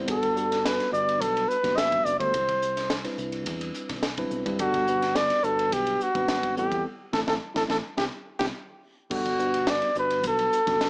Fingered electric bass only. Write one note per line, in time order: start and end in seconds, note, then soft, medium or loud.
0.08 0.79 G1 medium
0.93 1.21 G1 medium
1.21 1.45 B1 medium
1.64 1.99 F#1 medium
2.05 2.18 F#1 medium
2.20 2.32 D2 medium
2.34 3.05 C2 medium
3.18 3.47 C2 medium
3.47 3.70 E2 medium
3.90 4.25 B1 medium
4.31 4.43 B1 medium
4.46 4.58 G2 medium
4.60 5.30 G1 medium
5.44 5.72 G1 medium
5.72 5.96 B1 medium
6.15 6.56 G#1 medium
6.56 6.69 A1 medium
6.71 6.83 E2 medium
7.13 7.24 A1 medium
7.27 7.38 A1 medium
7.56 7.66 A1 medium
7.69 7.81 A1 medium
7.97 8.09 C2 medium
8.40 8.51 C2 medium
9.11 9.81 G1 medium
9.96 10.24 G1 medium
10.24 10.47 B1 medium
10.67 10.90 F#1 medium